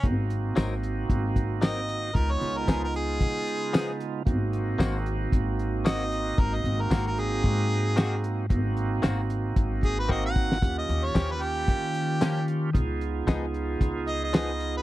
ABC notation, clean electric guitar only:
X:1
M:4/4
L:1/8
Q:"Swing 16ths" 1/4=113
K:Abmix
V:1 name="Clean electric guitar"
z2 [G,CEB] z3 [G,CEB] z | z2 [F,_CEA] z3 [F,CEA] z | z2 [E,B,CG] z3 [E,B,CG] z | z2 [E,B,CG] z3 [E,B,CG] z |
z2 [E,B,CG] z3 [E,B,CG] z | z2 [F,B,D=G] z3 [F,B,DG] z | z2 [F,_CEA] z3 [F,CEA] z |]